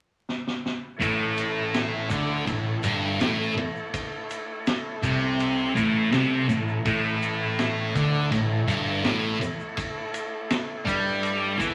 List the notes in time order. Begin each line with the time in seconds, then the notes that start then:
0.29 snare
0.47 snare
0.66 snare
0.96 A2 A3 E4 A4 C#5
1.02 A1, kick, ride, shaker
1.37 ride, shaker
1.74 snare, ride, shaker
2.10 D2 D3, kick, ride, shaker
2.47 A1 A2, kick, ride, shaker
2.83 G1 G2, ride, shaker
3.19 A1 A2, snare, ride, shaker
3.40 snare
3.56 muted distorted electric guitar stroke, muted picked electric bass stroke, ride
3.76 shaker
3.94 kick, ride, shaker
4.30 ride, shaker
4.67 snare, ride, shaker
5.03 C2 C3, kick, ride, shaker
5.39 ride, shaker
5.75 A1 A2, kick, ride, shaker
6.12 C2 C3, snare, ride, shaker
6.32 snare
6.49 A1 A2, ride, shaker
6.68 shaker
6.85 A1 A2, kick, ride, shaker
7.22 ride, shaker
7.59 snare, ride, shaker
7.95 D2 D3, kick, ride, shaker
8.31 A1 A2, kick, ride, shaker
8.67 G1 G2, ride, shaker
9.03 A1 A2, snare, ride, shaker
9.40 muted distorted electric guitar stroke, muted picked electric bass stroke, ride, shaker
9.60 shaker
9.77 kick, ride, shaker
10.14 ride, shaker
10.50 snare, ride, shaker
10.85 G2 G3, kick, ride, shaker
11.07 shaker
11.23 ride, shaker
11.58 E2 E3, kick, ride, shaker